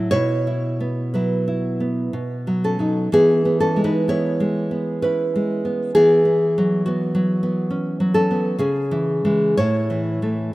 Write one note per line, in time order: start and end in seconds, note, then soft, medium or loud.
0.11 2.08 B2 medium
0.11 0.46 E4 medium
0.11 1.08 C#5 loud
0.47 1.14 E4 soft
0.80 1.79 B3 soft
1.14 2.13 F#3 soft
1.14 1.46 E4 soft
1.14 2.08 B4 medium
1.48 2.13 E4 soft
1.80 2.12 B3 soft
2.13 3.07 B2 soft
2.47 2.78 F#3 soft
2.64 3.08 C#4 medium
2.64 3.09 A4 medium
2.79 3.07 F#3 soft
2.79 3.08 D#4 soft
3.12 5.91 E3 medium
3.12 3.44 B3 medium
3.12 3.58 G#4 medium
3.45 4.07 B3 soft
3.60 3.82 C#4 medium
3.60 3.83 A4 medium
3.76 4.39 G#3 soft
3.84 4.05 D#4 medium
3.84 4.07 B4 medium
4.08 4.70 B3 soft
4.08 4.99 E4 medium
4.08 4.99 C#5 medium
4.40 5.34 G#3 medium
4.71 5.04 B3 soft
5.02 5.95 C#4 soft
5.02 5.65 E4 medium
5.02 5.91 B4 medium
5.35 5.95 G#3 soft
5.65 5.95 B3 soft
5.95 8.53 E3 medium
5.95 6.24 B3 medium
5.95 6.82 G#4 loud
6.25 6.86 B3 soft
6.58 7.13 F#3 medium
6.86 7.42 B3 soft
6.86 7.67 F#4 medium
7.15 7.99 F#3 medium
7.43 8.29 B3 soft
7.70 8.14 C#4 soft
8.00 8.58 F#3 soft
8.14 8.55 C#4 medium
8.14 8.56 A4 medium
8.31 8.59 B3 soft
8.59 9.55 C#3 medium
8.59 9.54 C#4 medium
8.59 9.54 G#4 medium
8.91 9.24 E3 medium
9.25 9.54 E3 soft
9.25 9.54 G#3 medium
9.57 10.51 A2 medium
9.57 10.50 E4 medium
9.57 10.49 C#5 medium
9.90 10.21 E3 soft
10.22 10.50 E3 soft
10.22 10.51 A3 soft